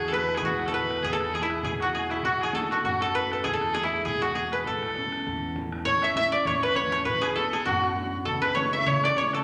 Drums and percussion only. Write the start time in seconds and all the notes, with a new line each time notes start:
0.11 bodhran
0.29 bodhran
0.36 bodhran
0.41 bodhran
0.51 bodhran
0.59 bodhran
0.66 bodhran
0.73 bodhran
0.91 bodhran
1.03 bodhran
1.20 bodhran
1.33 bodhran
1.50 bodhran
1.56 bodhran
1.63 bodhran
1.72 bodhran
1.80 bodhran
1.93 bodhran
2.10 bodhran
2.23 bodhran
2.40 bodhran
2.53 bodhran
2.71 bodhran
2.78 bodhran
2.84 bodhran
2.93 bodhran
3.01 bodhran
3.15 bodhran
3.32 bodhran
3.45 bodhran
3.62 bodhran
3.75 bodhran
3.99 bodhran
4.05 bodhran
4.14 bodhran
4.22 bodhran
4.35 bodhran
4.52 bodhran
4.66 bodhran
4.83 bodhran
4.95 bodhran
5.12 bodhran
5.19 bodhran
5.26 bodhran
5.35 bodhran
5.56 bodhran
5.72 bodhran
5.85 bodhran
6.02 bodhran
6.16 bodhran
6.45 bodhran
6.63 bodhran
6.76 bodhran
6.93 bodhran
7.06 bodhran
7.23 bodhran
7.36 bodhran
7.67 bodhran
7.84 bodhran
7.96 bodhran
8.27 bodhran
8.44 bodhran
8.57 bodhran
8.86 bodhran
9.04 bodhran
9.16 bodhran
9.33 bodhran